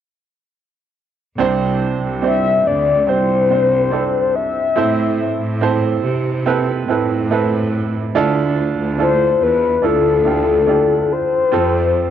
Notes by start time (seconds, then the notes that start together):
1.38 C2 C3 C4 D4 G4 C5
2.02 C2
2.22 C4 D4 G4 C5 E5
2.66 D2 D5
3.07 C2 C4 D4 G4 C5
3.50 C4 D4 G4 C5
3.91 C4 D4 G4 A4
4.35 E5
4.76 A2 C4 E4 A4 C5
5.40 A2
5.61 C4 E4 A4 C5
6.04 C3
6.46 C4 E4 A4 B4
6.88 A2 C4 E4 A4 B4
7.31 C4 E4 A4 B4
8.15 D2 D3 D4 E4 F4 A4
8.79 D2
8.98 D4 E4 F4 A4 C5
9.42 E2 B4
9.82 D2 D4 E4 F4 A4
10.25 D4 E4 F4 G4
10.67 D4 E4 F4 G4
11.13 C5
11.51 F2 C4 F4 G4 A4